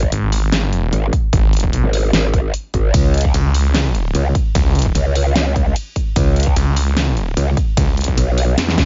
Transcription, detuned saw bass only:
0.12 0.91 G#1 loud
1.33 1.72 G#1 loud
1.73 1.82 B1 loud
3.34 4.13 C#2 medium
4.55 4.94 C#2 loud
6.56 7.35 C#2 loud
7.77 8.16 C#2 loud
8.58 8.76 E2 medium
8.78 8.85 C#2 loud

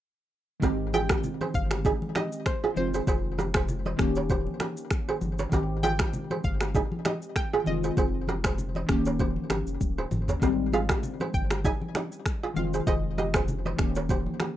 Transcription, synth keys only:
0.60 2.71 D#3 medium
0.60 2.72 G#3 medium
0.60 2.73 C4 medium
0.65 2.74 G4 medium
2.74 3.95 D#3 medium
2.74 3.96 G#3 medium
2.74 3.97 C4 medium
2.79 3.98 F4 medium
3.96 5.48 D#3 medium
3.96 5.49 A#3 medium
3.96 5.49 C#4 medium
4.02 5.50 G4 medium
5.49 7.61 D#3 medium
5.49 7.62 G#3 medium
5.49 7.63 C4 medium
5.54 7.64 G4 medium
7.64 8.85 D#3 medium
7.64 7.73 G3 soft
7.64 8.87 C4 medium
7.69 8.89 G#3 medium
7.69 8.88 F4 medium
8.87 10.38 D#3 medium
8.87 10.39 A#3 medium
8.87 10.39 C#4 medium
8.92 10.40 G4 medium
10.40 12.51 D#3 medium
10.40 12.52 G#3 medium
10.40 12.53 C4 medium
10.45 12.54 G3 medium
12.54 13.75 D#3 medium
12.54 13.76 G#3 medium
12.54 13.77 C4 medium
12.59 13.78 F4 medium
13.76 14.57 D#3 medium
13.76 14.57 A#3 medium
13.76 14.57 C#4 medium
13.81 14.57 G4 medium

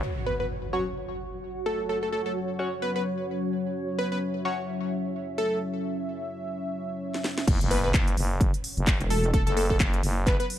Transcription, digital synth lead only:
0.26 0.35 B4 medium
0.40 0.46 B4 medium
1.66 1.86 A4 medium
1.89 1.98 A4 medium
2.03 2.09 A4 medium
2.12 2.21 A4 medium
2.26 2.32 A4 medium
2.82 2.91 B4 medium
2.96 3.02 B4 medium
3.99 4.07 B4 medium
4.12 4.18 B4 medium
5.38 5.58 A4 medium
7.71 7.79 B4 medium
7.84 7.90 B4 medium
9.10 9.31 A4 medium
9.34 9.42 A4 medium
9.47 9.53 A4 medium
9.57 9.65 A4 medium
9.70 9.76 A4 medium
10.27 10.35 B4 medium
10.40 10.46 B4 medium

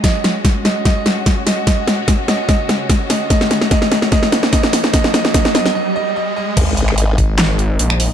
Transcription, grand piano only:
0.04 0.57 D#5 medium
0.65 0.84 D#5 medium
0.85 1.39 D#5 medium
1.47 1.65 D#5 medium
1.67 2.21 D#5 medium
2.28 2.47 D#5 medium
2.49 3.02 D#5 medium
3.10 3.29 D#5 medium
3.30 3.70 D#5 loud
3.71 4.10 D#5 medium
4.12 4.51 D#5 loud
4.53 4.92 D#5 loud
4.94 5.12 D#5 loud
5.14 5.33 D#5 loud
5.34 5.53 D#5 loud
5.55 5.74 D#5 loud
5.75 5.94 D#5 loud
5.96 6.15 D#5 loud
6.16 6.35 D#5 loud
6.36 6.55 D#5 loud

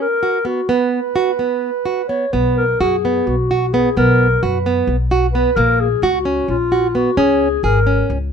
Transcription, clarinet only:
0.01 0.48 A#4 medium
0.46 0.71 F#4 medium
0.69 2.07 B4 medium
2.08 2.34 C#5 medium
2.32 2.56 B4 medium
2.57 2.82 A#4 medium
2.80 3.28 G#4 medium
3.27 3.74 F#4 medium
3.73 3.96 G#4 medium
3.98 4.44 A#4 medium
4.43 4.94 B4 medium
5.33 5.57 B4 medium
5.55 5.82 A#4 medium
5.80 6.05 G#4 medium
6.03 6.49 F#4 medium
6.49 6.97 F4 medium
6.95 7.19 F#4 medium
7.18 7.64 G#4 medium
7.64 8.13 A#4 medium

